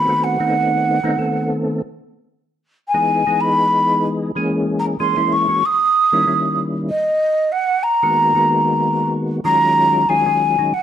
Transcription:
Already playing: B5
0.08 D#3 A3 B3 C4 F#4
0.24 F#5
0.40 D#3 A3 B3 C4 D#4
1.03 D#3 A3 B3 C4 D#4
1.17 D#3 A3 B3 C4 A4
2.88 G#5
2.94 E3 G#3 B3 D#4 G#4
3.27 E3 G#3 B3 D#4 G#4
3.41 B5
4.35 E3 G#3 A#3 C#4 G#4
4.79 A#5
5.00 E3 G#3 A#3 C#4 G#4 C6
5.16 E3 G#3 A#3 C#4 E4
5.32 C#6
5.48 E3 G#3 A#3 C#4 F#4
5.66 D#6
6.12 D#3 G3 A#3 C#4 E4
6.27 D#3 G3 A#3 C#4 E4
6.89 D#5
7.52 F#5
7.83 A#5
8.03 D#3 G#3 A#3 B3 F#4
8.35 D#3 G#3 A#3 B3 F#4
9.44 D#3 F#3 G#3 C#4 F4 A#5
10.09 D#3 F#3 G#3 C#4 F4 G#5
10.26 D#3 F#3 G#3 C#4 F4
10.58 D#3 F#3 G#3 C#4 D#4
10.74 F#5

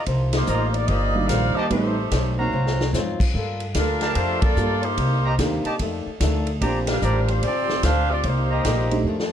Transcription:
0.06 C2 C3 F3 A#3 D#4, kick, ride
0.33 A#3 D#4 G4 C5, snare, ride
0.47 A1 C3 F3 A#3 D#4 F4 D5 D#5 A#5, hi-hat pedal
0.74 A#3 D#4 G4 D5, ride
0.87 G1 C3 F3 A#3 G4 D5 D#5, kick, ride
0.92 D#4
1.15 D#3 G3 A#3 D4 F4
1.27 A#1 C3 F3 A#3 D#4 A#4 D5 F5, kick, snare, hi-hat pedal, ride
1.32 D#4
1.55 A#3 D#4 G4 C5 D5 D#5 A5, muted upright bass stroke
1.70 A1 A2 G3 A3 B3 C4 D#4 G4 C5, kick, ride
2.11 B1 A2 G3 C4 D#4, kick, snare, hi-hat pedal, ride
2.38 F#3 A#3 C4 D#4 F#4 C5 F5 A#5
2.52 C2 G#2 F#3 C4 F4
2.67 snare
2.81 snare
2.93 F2 G#2 F#3 C4 F4, snare, hi-hat pedal
3.20 kick, crash
3.33 G2 G3 A#3 F4 A4, kick
3.60 ride
3.74 D2 F3 G3 A#3 D4 F4 A4 A#4, kick, snare, hi-hat pedal, ride
4.01 G4 A#4 F5 A5, snare, ride
4.15 F2 G3 A3 A#3 D4 F4 C5, kick, ride
4.19 A4
4.41 A#3 F4 A4 D5, kick, ride
4.56 G2 G3 A#3 D4 F4 A4, hi-hat pedal
4.83 A#3 D#4 G4 C5, ride
4.97 C2 C3 G3 A#3 D#4, kick, ride
5.24 G4 C5 D#5 A#5
5.39 D#2 C3 G3 A#3 C4 D4 D#4 G4, kick, snare, hi-hat pedal, ride
5.64 G4 D5 D#5 A5, muted upright bass stroke, ride
5.79 F2 D#3 A3, kick, ride
5.83 D4
6.06 muted upright bass stroke
6.20 D2 F2 D#3 A3 D4, kick, snare, hi-hat pedal, ride
6.47 ride
6.61 A#1 A#2 G3 A#3 C4 D4 F4 G4 C5 D5 A#5, kick, ride
6.65 C4 D4
6.87 G3 D4 F4 A#4, snare, ride
7.02 A1 A#2 G3 C4 D4 G4 C5 D5 A#5, hi-hat pedal
7.28 G3 D4 F4 C5, ride
7.43 G1 A#2 G3 C4 D4 F4 G4 D5, kick, ride
7.69 snare
7.83 D2 A#2 G3 C4 D4 G4 C5 F5, kick, snare, hi-hat pedal, ride
8.10 C4 F4 G4 D5
8.23 C2 C3 G3 A#3 D#4 G4 C5, kick, ride
8.28 D#4
8.50 G4 C5 D#5 A#5
8.65 A#1 C3 G3 A#3 D#4, kick, snare, hi-hat pedal, ride
8.91 A3 C4 D4 D#4 G4, ride
9.04 F2 D#3
9.08 A3 D4
9.20 snare

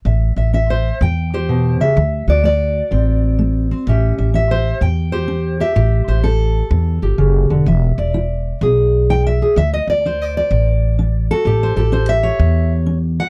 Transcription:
0.05 A1 A2 E5
0.36 A1 E5
0.53 C#4 E5
0.70 C5
1.01 E2 A2 G5
1.34 G4 C5
1.49 B2
1.80 C#3 E5
1.97 D2 D3
2.28 D2 F#4 D5
2.44 A3 D5
2.91 A1 A2 C4
3.39 A3
3.71 C4
3.87 A1 A2 C#4 G4 E5
4.18 A1 E5
4.34 C#4 E5
4.51 C5
4.81 E2 A2 G5
5.12 G4 C5
5.28 C#4
5.60 G4 E5
5.75 A1 A2 G4
6.08 A1 C5
6.24 C#4 A4
6.71 E2 A2
7.02 G1 G4
7.18 F#1 C#3
7.50 E1 D3
7.66 E1 E3 E5
7.98 E1 D5
8.14 E4
8.61 B1 B3 G#4
9.10 E4 G5
9.27 E5
9.42 G#4
9.56 D2 D3 E5
9.74 D#5
9.87 D2 D5
10.06 D4 C5
10.22 D5
10.37 D5
10.51 A1 A2
10.99 D4
11.31 F#4 A4
11.45 A1 A2 G4
11.63 C5
11.76 A1 G4 A4
11.92 C#4 C5
12.09 E5
12.23 C#5
12.39 E2 A2
12.86 C#4
13.20 F#5

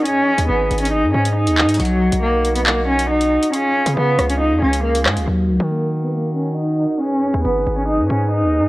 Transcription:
Already playing: D#4
0.06 C#4 G#4 D#5 G#5, closed hi-hat
0.38 D#2, closed hi-hat
0.48 G#1 B3
0.71 G#1, closed hi-hat
0.78 C#4, closed hi-hat
0.85 closed hi-hat
0.93 D#4
1.03 G#2
1.14 G#2 C#4
1.25 closed hi-hat
1.36 D#4
1.47 D#2, closed hi-hat
1.58 clap
1.63 G#2
1.69 closed hi-hat
1.74 closed hi-hat
1.80 B1 F#3 D#4 F#4 F#5, closed hi-hat
1.85 closed hi-hat
2.12 B1, closed hi-hat
2.23 A#3
2.45 closed hi-hat
2.56 B3, closed hi-hat
2.67 A#3, clap
2.88 C#4
2.99 closed hi-hat
3.10 D#4
3.21 closed hi-hat
3.43 closed hi-hat
3.53 C#4 F4 G#4 F5, closed hi-hat
3.86 C#3, closed hi-hat
3.97 C#3 B3
4.19 C#2, cross-stick, closed hi-hat
4.30 C#4, closed hi-hat
4.40 D#4
4.51 F2
4.62 C#2 C#4
4.73 closed hi-hat
4.84 A#3
4.95 closed hi-hat
5.06 G#2 G#3, cross-stick, clap
5.17 C#2, closed hi-hat
5.27 D#2 F#3 D#4 F#4 A#4 F#5
5.49 C#2
5.60 D#3
5.71 A#3
6.04 B3
6.15 A#3
6.36 C#4
6.58 D#4
7.01 C#4 G#4 B4 G#5
7.34 D#2
7.44 G#1 B3
7.67 G#1
7.77 C#4
7.88 D#4
7.99 G#2
8.10 G#2 C#4
8.32 D#4
8.43 D#2
8.59 G#2

